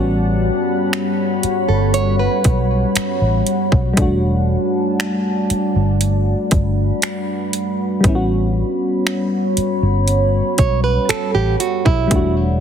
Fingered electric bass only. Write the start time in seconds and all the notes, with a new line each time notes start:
Already playing: A1
1.44 muted fingered electric bass stroke
1.69 G1
2.45 B1
2.96 muted fingered electric bass stroke
3.21 A1
3.72 B1
3.97 E1
5.50 muted fingered electric bass stroke
5.76 G1
6.52 G1
8.04 A1
9.57 muted fingered electric bass stroke
9.83 G1
10.59 B1
11.10 muted fingered electric bass stroke
11.35 A1
11.86 B1
12.11 E1